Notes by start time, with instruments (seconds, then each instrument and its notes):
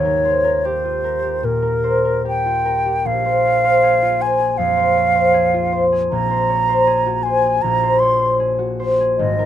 Already playing: harp D#2 F4, flute C#5
0.05 harp A#4
0.25 harp C5
0.44 harp A#4
0.65 harp G4, flute C5
0.84 harp F4
1.04 harp A#4
1.23 harp G4
1.43 harp A#2, flute A#4
1.62 harp A#4
1.84 harp C5
2.05 harp A#4
2.25 harp G4, flute G5
2.46 harp F4
2.65 harp A#4
2.86 harp G4
3.05 harp A#1, flute F5
3.25 harp C5
3.45 harp C#5
3.64 harp C5
3.83 harp G#4
4.02 harp F4
4.20 harp C5, flute G#5
4.40 harp G#4
4.58 harp F2, flute F5
4.77 harp C5
4.97 harp C#5
5.15 harp C5
5.34 harp G#4
5.54 harp F4
5.72 harp C5
5.92 harp G#4
6.11 harp A#1, flute A#5
6.31 harp C5
6.49 harp C#5
6.69 harp C5
6.87 harp G#4
7.07 harp F#4
7.23 harp C5, flute G#5
7.45 harp G#4
7.62 harp A#1, flute A#5
7.83 harp C5
7.99 harp C#5, flute C6
8.20 harp C5
8.40 harp G#4
8.59 harp F#4
8.80 harp C5
9.00 harp G#4
9.18 harp G#1, flute D#5
9.39 harp A#4